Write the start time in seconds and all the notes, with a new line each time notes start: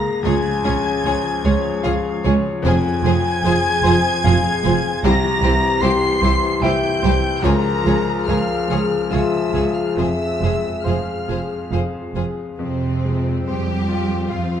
Already playing: C#2 G#3 A#3 G#4 A#4 F5 A#5 A#6
0.23 C#2 F3 G#3 F4 G#4 C#5 G#5 G#6
0.65 C#2 G#3 C#4 F4 G#4 C#5
1.04 C#2 G#3 F4 G#4 C#5
1.45 C#2 G#3 F4 G#4 C#5
1.83 C#2 G#3 F4 G#4 C#5 F5
2.24 C#2 G#3 F4 G#4 C#5
2.62 F1 F2 F3 F4 G#4 C5 G#5 G#6
3.03 F1 F2 F3 C4 F4 G#4 C5
3.43 F1 F2 F3 F4 G#4 C5
3.83 F1 F2 F3 F4 G#4 C5
4.24 F1 F2 F3 F4 G#4 C5 F5
4.64 F1 F2 F3 F4 G#4 C5
5.03 C2 E3 G3 E4 G4 C5 A#5 A#6
5.42 C2 G3 C4 E4 G4 C5
5.82 C2 G3 E4 G4 C5 C6 C7
6.22 C2 G3 E4 G4 C5
6.62 C2 G3 E4 G4 C5 E5 G5 G6
7.03 C2 G3 E4 G4 C5
7.42 C#2 F3 F4 G#4 A#4 C#5 A#5
7.84 C#2 F3 G#3 F4 G#4 C#5
8.27 C#2 F3 F4 G#4 A#4 C#5 F5 F6
8.69 C#2 F3 F4 G#4 C#5
9.10 C#2 F3 F4 G#4 C#5 E5 E6
9.51 C#2 F3 F4 G#4 C#5
9.76 F5 F6
9.95 F1 F2 F3 F4 G#4 C5 E5 E6
10.40 F1 F2 F3 G#3 F4 G#4 C5
10.84 F1 F2 F3 F4 G#4 C5 F5 F6
11.28 F1 F2 F3 F4 G#4 C5
11.71 F1 F2 F3 F4 G#4 C5 F5
12.15 F1 F2 F3 F4 G#4 C5
12.58 F2 C3 C4 C5
13.03 F3 G#3 C4
13.46 F2 G3 G4 C5 G5
13.89 F3 C4 F4
14.30 F2 F3 F4 F5